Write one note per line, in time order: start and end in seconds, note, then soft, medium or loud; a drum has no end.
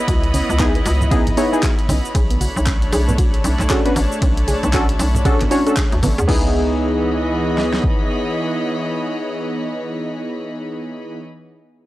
0.00 2.11 B3 medium
0.00 2.11 E4 medium
0.00 3.28 E4 medium
0.00 6.29 C#5 medium
0.00 2.11 D#5 medium
0.00 2.15 D#5 medium
0.00 6.29 B5 medium
0.08 0.42 C#2 loud
0.08 0.20 F#4 medium
0.08 kick loud
0.08 closed hi-hat medium
0.08 ride medium
0.08 shaker soft
0.24 closed hi-hat medium
0.34 0.42 C#4 medium
0.34 open hi-hat loud
0.34 high conga medium
0.34 shaker medium
0.49 0.81 C#2 loud
0.49 shaker soft
0.59 0.71 B3 loud
0.59 0.71 D#4 medium
0.59 0.71 E4 medium
0.59 0.72 G#4 loud
0.59 kick loud
0.59 clap loud
0.59 closed hi-hat medium
0.59 ride medium
0.59 shaker soft
0.75 0.78 B3 medium
0.75 closed hi-hat medium
0.86 1.32 C#2 loud
0.86 0.98 F#4 medium
0.86 open hi-hat loud
0.86 shaker medium
1.01 low conga medium
1.01 shaker soft
1.11 1.23 B3 medium
1.11 1.19 C#4 medium
1.11 1.23 D#4 medium
1.11 1.23 E4 medium
1.11 1.23 G#4 loud
1.11 kick loud
1.11 closed hi-hat medium
1.11 ride medium
1.11 high conga medium
1.11 shaker soft
1.27 closed hi-hat medium
1.27 low conga medium
1.37 1.50 B3 medium
1.37 1.50 D#4 medium
1.37 1.51 E4 medium
1.37 1.49 G#4 loud
1.37 1.51 C#5 medium
1.37 open hi-hat loud
1.37 shaker medium
1.52 1.66 B3 medium
1.52 1.56 B3 medium
1.52 1.66 D#4 medium
1.52 1.66 E4 medium
1.52 1.67 G#4 medium
1.52 shaker soft
1.63 1.75 F#4 medium
1.63 kick loud
1.63 clap loud
1.63 closed hi-hat medium
1.63 ride medium
1.63 shaker soft
1.79 closed hi-hat medium
1.89 2.00 B1 medium
1.89 1.97 C#4 medium
1.89 open hi-hat medium
1.89 high conga loud
1.89 low conga medium
1.89 shaker medium
2.05 shaker soft
2.15 2.49 B1 loud
2.15 6.25 A3 medium
2.15 6.25 D4 medium
2.15 6.29 D4 medium
2.15 2.27 G#4 loud
2.15 6.25 C#5 medium
2.15 kick loud
2.15 closed hi-hat medium
2.15 ride medium
2.15 shaker soft
2.30 2.34 B3 medium
2.30 closed hi-hat medium
2.41 2.53 F#4 medium
2.41 open hi-hat loud
2.41 high conga medium
2.41 shaker medium
2.56 2.88 B1 loud
2.56 shaker soft
2.66 2.75 C#4 medium
2.66 kick loud
2.66 clap loud
2.66 closed hi-hat medium
2.66 ride medium
2.66 shaker soft
2.72 6.29 A5 medium
2.82 closed hi-hat medium
2.92 3.39 B1 loud
2.92 3.04 G#4 loud
2.92 open hi-hat loud
2.92 shaker medium
3.08 3.11 B3 medium
3.08 low conga loud
3.08 shaker soft
3.18 3.30 F#4 medium
3.18 kick loud
3.18 closed hi-hat medium
3.18 ride medium
3.18 shaker soft
3.34 closed hi-hat medium
3.44 3.55 B1 loud
3.44 3.52 C#4 medium
3.44 open hi-hat medium
3.44 shaker medium
3.59 3.67 B1 medium
3.59 clap soft
3.59 low conga medium
3.59 shaker soft
3.70 3.82 C#4 medium
3.70 3.82 D4 medium
3.70 3.82 F#4 medium
3.70 3.82 G#4 loud
3.70 3.82 A4 loud
3.70 kick loud
3.70 clap loud
3.70 closed hi-hat medium
3.70 ride medium
3.70 shaker soft
3.85 3.89 B3 medium
3.85 3.93 C#4 medium
3.85 3.93 D4 medium
3.85 3.93 F#4 medium
3.85 3.94 B4 medium
3.85 closed hi-hat medium
3.96 4.07 A1 loud
3.96 4.08 F#4 medium
3.96 open hi-hat medium
3.96 shaker medium
4.12 shaker soft
4.22 4.56 B1 loud
4.22 4.30 C#4 medium
4.22 kick loud
4.22 closed hi-hat medium
4.22 ride medium
4.22 shaker soft
4.37 closed hi-hat medium
4.48 4.60 G#4 loud
4.48 open hi-hat loud
4.48 high conga medium
4.48 shaker medium
4.63 4.94 B1 loud
4.63 4.66 B3 medium
4.63 closed hi-hat soft
4.63 shaker soft
4.73 4.85 C#4 loud
4.73 4.85 D4 medium
4.73 4.85 F#4 medium
4.73 4.85 A4 loud
4.73 kick loud
4.73 clap loud
4.73 closed hi-hat medium
4.73 ride medium
4.73 shaker soft
4.89 closed hi-hat medium
4.99 5.46 B1 loud
4.99 5.07 C#4 medium
4.99 open hi-hat loud
4.99 shaker medium
5.14 low conga medium
5.14 shaker soft
5.25 5.37 C#4 loud
5.25 5.37 D4 medium
5.25 5.37 F#4 medium
5.25 5.37 G#4 loud
5.25 5.37 A4 loud
5.25 kick loud
5.25 closed hi-hat medium
5.25 ride medium
5.25 high conga medium
5.25 shaker soft
5.40 5.44 B3 medium
5.40 clap soft
5.40 closed hi-hat medium
5.40 high conga medium
5.40 low conga medium
5.51 5.63 C#4 medium
5.51 5.63 D4 medium
5.51 5.59 E4 medium
5.51 5.63 F#4 medium
5.51 5.63 C#5 medium
5.51 open hi-hat loud
5.51 shaker medium
5.66 5.74 C#4 medium
5.66 5.75 C#4 medium
5.66 5.74 D4 medium
5.66 5.74 F#4 medium
5.66 5.75 A4 medium
5.66 closed hi-hat soft
5.66 shaker soft
5.77 5.85 G#4 loud
5.77 kick loud
5.77 clap loud
5.77 closed hi-hat medium
5.77 ride medium
5.77 shaker soft
5.92 6.00 D2 medium
5.92 closed hi-hat medium
6.03 6.14 A1 loud
6.03 6.11 B3 medium
6.03 open hi-hat medium
6.03 high conga loud
6.03 low conga medium
6.03 shaker medium
6.18 6.26 E2 loud
6.18 6.24 G#4 medium
6.18 closed hi-hat soft
6.18 shaker soft
6.28 7.80 C#2 loud
6.28 11.18 E3 medium
6.28 11.19 E3 medium
6.28 11.18 B3 medium
6.28 11.19 B3 medium
6.28 6.53 C#4 loud
6.28 11.18 D#4 medium
6.28 11.19 E4 medium
6.28 11.20 G#4 loud
6.28 11.19 D#5 medium
6.28 kick loud
6.28 crash medium
6.38 11.18 C#5 medium
6.46 11.18 D#5 medium
6.52 11.18 B5 medium
7.58 snare medium
7.73 snare medium
7.84 kick medium